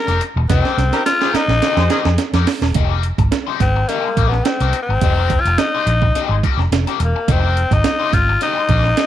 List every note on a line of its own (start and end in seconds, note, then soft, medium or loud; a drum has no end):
0.00 0.22 A#4 medium
0.07 0.18 F1 medium
0.07 0.21 G#3 medium
0.07 0.21 D#4 medium
0.07 0.21 G4 medium
0.07 0.21 A#4 medium
0.07 snare soft
0.07 closed hi-hat soft
0.21 muted overdriven electric guitar stroke soft
0.21 closed hi-hat medium
0.36 0.47 E1 medium
0.36 muted overdriven electric guitar stroke soft
0.49 0.61 F1 loud
0.49 0.76 G#3 medium
0.49 1.02 C4 medium
0.49 0.76 D#4 loud
0.49 0.76 G4 medium
0.49 0.76 A#4 medium
0.49 kick loud
0.49 snare medium
0.49 closed hi-hat loud
0.65 snare soft
0.78 0.90 C2 medium
0.78 snare medium
0.78 closed hi-hat medium
0.93 1.01 G3 medium
0.93 1.01 D#4 medium
0.93 1.01 A#4 medium
0.93 muted overdriven electric guitar stroke medium
0.93 snare medium
0.93 closed hi-hat medium
1.06 1.37 F4 loud
1.06 muted overdriven electric guitar stroke soft
1.06 snare medium
1.06 closed hi-hat loud
1.21 1.32 D#3 medium
1.21 1.34 G#3 medium
1.21 1.32 C4 medium
1.21 1.34 D#4 medium
1.21 1.34 G4 medium
1.21 1.32 G#4 medium
1.21 1.35 C5 medium
1.21 snare medium
1.33 1.43 G3 medium
1.33 1.43 D#4 medium
1.33 2.20 D#4 loud
1.33 1.42 A#4 medium
1.33 muted fingered electric bass stroke soft
1.33 muted overdriven electric guitar stroke soft
1.33 snare medium
1.33 closed hi-hat medium
1.48 1.59 A#1 medium
1.48 muted overdriven electric guitar stroke soft
1.48 snare medium
1.62 1.82 G#3 medium
1.62 1.78 D#4 medium
1.62 1.78 G4 medium
1.62 1.77 A#4 medium
1.62 snare medium
1.62 closed hi-hat medium
1.76 1.88 F2 medium
1.76 1.88 G#3 medium
1.76 1.88 G4 medium
1.76 1.88 C5 medium
1.76 muted overdriven electric guitar stroke medium
1.76 snare medium
1.90 2.00 D#3 medium
1.90 2.06 G#3 medium
1.90 2.00 C4 medium
1.90 2.06 D#4 medium
1.90 2.05 G4 medium
1.90 2.00 G#4 medium
1.90 2.05 A#4 medium
1.90 snare medium
1.90 closed hi-hat medium
2.05 2.16 F2 medium
2.05 muted overdriven electric guitar stroke soft
2.05 snare medium
2.18 muted overdriven electric guitar stroke soft
2.18 snare medium
2.18 closed hi-hat medium
2.33 2.44 F2 loud
2.33 2.47 G#3 medium
2.33 2.47 D#4 medium
2.33 2.47 G4 medium
2.33 2.47 A#4 medium
2.33 snare medium
2.33 closed hi-hat soft
2.47 muted overdriven electric guitar stroke soft
2.47 snare loud
2.47 open hi-hat medium
2.61 2.72 E1 medium
2.61 muted overdriven electric guitar stroke soft
2.61 snare medium
2.74 3.10 F1 medium
2.74 3.02 G#3 medium
2.74 3.02 D#4 medium
2.74 3.02 G4 medium
2.74 3.02 A#4 medium
2.74 kick loud
2.74 closed hi-hat medium
3.03 closed hi-hat medium
3.18 3.29 G#1 medium
3.18 muted overdriven electric guitar stroke soft
3.18 kick medium
3.18 closed hi-hat medium
3.31 muted overdriven electric guitar stroke soft
3.31 snare loud
3.31 closed hi-hat medium
3.47 3.60 G#3 medium
3.47 3.60 D#4 medium
3.47 3.60 G4 medium
3.47 3.62 C5 medium
3.60 3.83 G#1 medium
3.60 3.90 C4 medium
3.60 muted overdriven electric guitar stroke soft
3.60 kick medium
3.60 snare soft
3.60 closed hi-hat medium
3.76 muted overdriven electric guitar stroke soft
3.88 4.08 G#3 medium
3.88 4.29 A#3 medium
3.88 4.04 D#4 medium
3.88 4.04 G4 medium
3.88 4.04 A#4 medium
3.88 snare soft
3.88 closed hi-hat medium
4.05 muted overdriven electric guitar stroke soft
4.17 4.40 A#1 medium
4.17 4.32 G#3 soft
4.17 4.32 D#4 medium
4.17 4.32 G4 medium
4.17 4.32 A#4 medium
4.17 kick medium
4.17 closed hi-hat medium
4.28 4.46 B3 medium
4.32 muted overdriven electric guitar stroke soft
4.32 snare soft
4.45 4.82 C4 medium
4.45 muted overdriven electric guitar stroke soft
4.45 snare loud
4.45 closed hi-hat medium
4.60 4.71 C2 medium
4.60 4.75 G#3 medium
4.60 4.75 D#4 medium
4.60 4.75 G4 medium
4.60 4.76 A#4 medium
4.60 snare soft
4.60 closed hi-hat medium
4.73 muted overdriven electric guitar stroke soft
4.73 closed hi-hat medium
4.82 5.42 C4 medium
4.89 4.99 G#1 medium
4.89 muted overdriven electric guitar stroke medium
5.01 5.36 F1 medium
5.01 5.29 G#3 medium
5.01 5.30 D#4 medium
5.01 5.29 G4 medium
5.01 5.30 A#4 medium
5.01 kick loud
5.01 closed hi-hat medium
5.30 kick medium
5.30 closed hi-hat medium
5.40 5.60 F4 loud
5.45 5.56 F1 medium
5.45 muted overdriven electric guitar stroke soft
5.45 closed hi-hat soft
5.58 6.44 D#4 medium
5.58 muted overdriven electric guitar stroke soft
5.58 snare loud
5.58 closed hi-hat medium
5.75 5.88 G#3 medium
5.75 5.88 D#4 medium
5.75 5.88 G4 medium
5.75 5.89 C5 medium
5.86 6.09 A#1 loud
5.86 muted overdriven electric guitar stroke soft
5.86 closed hi-hat medium
6.02 muted overdriven electric guitar stroke soft
6.02 kick medium
6.15 6.34 G#3 loud
6.15 6.30 D#4 medium
6.15 6.30 G4 loud
6.15 6.30 A#4 medium
6.15 snare soft
6.15 closed hi-hat medium
6.29 6.40 G#1 medium
6.29 muted overdriven electric guitar stroke medium
6.43 6.59 G#3 medium
6.43 6.59 D#4 medium
6.43 6.59 G4 medium
6.43 6.59 A#4 medium
6.43 kick medium
6.43 closed hi-hat medium
6.57 6.68 F1 medium
6.57 muted overdriven electric guitar stroke soft
6.57 snare soft
6.71 6.84 F1 medium
6.71 muted overdriven electric guitar stroke soft
6.71 snare loud
6.71 closed hi-hat medium
6.87 6.99 G#3 medium
6.87 6.99 D#4 medium
6.87 6.99 G4 medium
6.87 7.00 A#4 medium
6.87 snare soft
6.87 closed hi-hat medium
7.00 7.12 E1 medium
7.00 muted overdriven electric guitar stroke soft
7.00 closed hi-hat medium
7.04 7.33 A#3 medium
7.16 muted overdriven electric guitar stroke soft
7.28 7.63 F1 loud
7.28 7.55 G#3 medium
7.28 7.75 C4 loud
7.28 7.55 D#4 loud
7.28 7.55 G4 medium
7.28 7.55 A#4 loud
7.28 kick loud
7.28 closed hi-hat loud
7.57 closed hi-hat medium
7.71 7.82 G#1 medium
7.71 8.15 D#4 loud
7.71 muted overdriven electric guitar stroke soft
7.71 kick medium
7.71 closed hi-hat medium
7.84 muted overdriven electric guitar stroke soft
7.84 snare loud
7.84 closed hi-hat medium
7.99 8.13 G#3 medium
7.99 8.14 D#4 medium
7.99 8.14 G4 medium
7.99 8.15 C5 medium
8.13 8.36 G#1 medium
8.13 8.42 F4 loud
8.13 muted overdriven electric guitar stroke soft
8.13 kick medium
8.13 snare soft
8.13 closed hi-hat medium
8.29 muted overdriven electric guitar stroke soft
8.41 8.60 G#3 medium
8.41 8.57 D#4 medium
8.41 9.06 D#4 loud
8.41 8.57 G4 medium
8.41 8.56 A#4 medium
8.41 snare soft
8.41 closed hi-hat medium
8.58 muted overdriven electric guitar stroke soft
8.69 8.92 A#1 loud
8.69 8.85 G#3 medium
8.69 8.85 D#4 medium
8.69 8.84 G4 medium
8.69 8.84 A#4 medium
8.69 kick medium
8.69 closed hi-hat medium
8.84 muted overdriven electric guitar stroke medium
8.84 snare soft
8.97 muted overdriven electric guitar stroke soft
8.97 snare loud
8.97 closed hi-hat medium